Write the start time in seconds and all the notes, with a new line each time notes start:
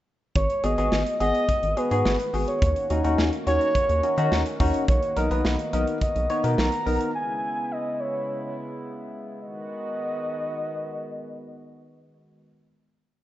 0.35 G#1 D#3 G#3 B3 F#4 C#5, kick, closed hi-hat
0.50 closed hi-hat
0.64 G#1 B3 F#4 G#4 D#5, closed hi-hat
0.78 G#1 B3 F#4 G#4, closed hi-hat
0.92 G#1, snare
1.06 closed hi-hat
1.20 G#1 B3 F#4 G#4 D#5, closed hi-hat
1.35 closed hi-hat
1.49 kick, closed hi-hat
1.63 G#1, closed hi-hat
1.77 B3 F#4 G#4 B4, closed hi-hat
1.91 G#2 B3 F#4 G#4, closed hi-hat
2.05 G#1, snare
2.19 closed hi-hat
2.34 G#1 B3 F#4 G#4, open hi-hat
2.48 C#5, closed hi-hat
2.62 D#2 A#3 C#4, kick, closed hi-hat
2.76 closed hi-hat
2.90 D#2 C#4 D#4 F#4, closed hi-hat
3.04 D#2 C#4 D#4 F#4, closed hi-hat
3.18 D#2, snare
3.33 closed hi-hat
3.47 D#2 C#4 D#4 F#4 C#5, closed hi-hat
3.61 closed hi-hat
3.75 kick, closed hi-hat
3.89 D#2, closed hi-hat
4.03 C#4 D#4 F#4, closed hi-hat
4.18 D#3 C#4 D#4 F#4, closed hi-hat
4.32 D#2, snare
4.46 closed hi-hat
4.60 D#2 C#4 D#4 F#4, kick, open hi-hat
4.74 closed hi-hat
4.88 B1 B3 C#5, kick, closed hi-hat
5.02 closed hi-hat
5.17 B1 B3 D#4 A#4 D#5, closed hi-hat
5.31 B1 B3 D#4 B4, closed hi-hat
5.45 B1, snare
5.59 closed hi-hat
5.73 B1 B3 D#4 A#4 D#5, closed hi-hat
5.87 closed hi-hat
6.01 D#5, kick, closed hi-hat
6.16 B1, closed hi-hat
6.30 B3 D#4 C#5, closed hi-hat
6.44 B2 B3 D#4 A#4, closed hi-hat
6.58 B1 A#5, snare
6.72 closed hi-hat
6.86 B1 B3 D#4 A#4, open hi-hat
7.01 closed hi-hat
7.15 C#3 G#3 E4 G#5
7.71 D#5
8.00 C#5
9.41 D#3 G#3 B3 F#4 D#5